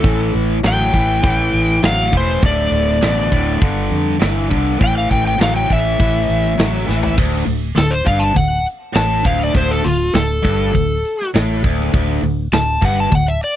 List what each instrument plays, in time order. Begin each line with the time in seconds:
Already playing: electric slide guitar A4
0.03 fingered electric bass A1, distorted electric guitar A2 E3, kick, open hi-hat
0.34 fingered electric bass A1, open hi-hat
0.64 fingered electric bass A1, distorted electric guitar A2 F#3, electric slide guitar G5, snare, open hi-hat
0.93 fingered electric bass A1, distorted electric guitar A2 E3, kick, open hi-hat
1.23 fingered electric bass A1, distorted electric guitar A2 E3, kick, open hi-hat
1.53 fingered electric bass A1, open hi-hat
1.83 fingered electric bass A1, distorted electric guitar A2 F#3, electric slide guitar F5, snare, open hi-hat
2.12 fingered electric bass E1, distorted electric guitar A2 E3, kick, open hi-hat
2.17 electric slide guitar C5
2.42 fingered electric bass D1, distorted electric guitar D2 A2, electric slide guitar D5, kick, open hi-hat
2.72 fingered electric bass D1, open hi-hat
3.01 fingered electric bass A1, distorted electric guitar D2 B2, snare, open hi-hat
3.32 fingered electric bass D1, distorted electric guitar D2 A2, kick, open hi-hat
3.61 fingered electric bass G1, distorted electric guitar G2 D3, kick, open hi-hat
3.91 fingered electric bass F2, open hi-hat
4.20 fingered electric bass G1, distorted electric guitar G2 E3, snare, open hi-hat
4.49 fingered electric bass C2, distorted electric guitar G2 D3, kick, open hi-hat
4.79 fingered electric bass A1, distorted electric guitar A2 E3, kick, open hi-hat
4.84 electric slide guitar G5
4.98 electric slide guitar F5
5.11 fingered electric bass A1, electric slide guitar G5, kick, open hi-hat
5.27 electric slide guitar G5
5.39 fingered electric bass A1, distorted electric guitar A2 F#3, electric slide guitar F5, snare, open hi-hat
5.56 electric slide guitar G5
5.69 fingered electric bass A1, distorted electric guitar A2 E3, electric slide guitar E5, kick, open hi-hat
5.99 fingered electric bass A1, distorted electric guitar A2 E3, kick, open hi-hat
6.29 fingered electric bass A1, open hi-hat
6.45 snare
6.58 fingered electric bass A1, distorted electric guitar A2 F#3, snare, open hi-hat
6.87 fingered electric bass A1, distorted electric guitar A2 E3, snare
7.03 floor tom
7.18 fingered electric bass D1, distorted electric guitar D2, kick, crash
7.46 fingered electric bass D1, distorted electric guitar D2, open hi-hat
7.75 fingered electric bass D1, distorted electric guitar D2, electric slide guitar A4, snare, open hi-hat
7.91 electric slide guitar C5
8.05 fingered electric bass G1, distorted electric guitar G2, electric slide guitar F5, kick, open hi-hat
8.19 electric slide guitar A5
8.34 fingered electric bass D1, distorted electric guitar D2, electric slide guitar F#5, kick, open hi-hat
8.66 open hi-hat
8.94 fingered electric bass A1, distorted electric guitar A2, electric slide guitar A5, snare, open hi-hat
9.24 fingered electric bass D1, distorted electric guitar D2, electric slide guitar F5, kick, open hi-hat
9.44 electric slide guitar D5
9.54 fingered electric bass D1, distorted electric guitar D2, electric slide guitar C5, kick, open hi-hat
9.71 electric slide guitar A4
9.84 fingered electric bass D1, distorted electric guitar D2, electric slide guitar F4, open hi-hat
10.14 fingered electric bass D1, distorted electric guitar D2, electric slide guitar A4, snare, open hi-hat
10.43 fingered electric bass G1, distorted electric guitar G2, kick, open hi-hat
10.73 fingered electric bass D1, distorted electric guitar D2, kick, open hi-hat
11.05 open hi-hat
11.21 snare
11.34 fingered electric bass A1, distorted electric guitar A2, snare, open hi-hat
11.64 fingered electric bass D1, distorted electric guitar D2, kick, open hi-hat
11.80 snare
11.93 fingered electric bass D1, distorted electric guitar D2, kick, open hi-hat
12.23 fingered electric bass D1, distorted electric guitar D2, open hi-hat
12.52 fingered electric bass D1, distorted electric guitar D2, electric slide guitar A5, snare, open hi-hat
12.82 fingered electric bass G1, distorted electric guitar G2, electric slide guitar F#5, kick, open hi-hat
13.00 electric slide guitar A5
13.11 fingered electric bass D1, distorted electric guitar D2, electric slide guitar F#5, kick, open hi-hat
13.28 electric slide guitar E5
13.42 electric slide guitar D5, open hi-hat